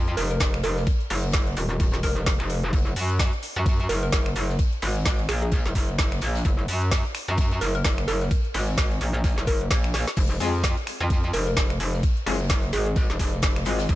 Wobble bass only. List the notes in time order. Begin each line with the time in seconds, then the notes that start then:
Already playing: F2
0.17 F1
0.40 F1
0.64 F1
1.10 F#1
1.57 D#1
2.03 F1
2.40 F1
2.73 F#1
2.96 F#2
3.56 F#2
3.89 F#1
4.12 F#1
4.36 F#1
4.82 G#1
5.29 A#1
5.65 F#1
5.75 F#1
5.98 F#1
6.22 A#1
6.45 F#1
6.68 F#2
7.28 F#2
7.61 F#1
7.85 F#1
8.08 F#1
8.54 G#1
9.01 A#1
9.38 F#1
9.47 F#1
9.71 A#1
10.17 F1
10.40 F2
11.00 F2
11.33 F1
11.57 F1
11.80 F1
12.26 F#1
12.73 G#1
13.10 F1
13.19 F1
13.43 F1
13.66 G#1
13.89 F1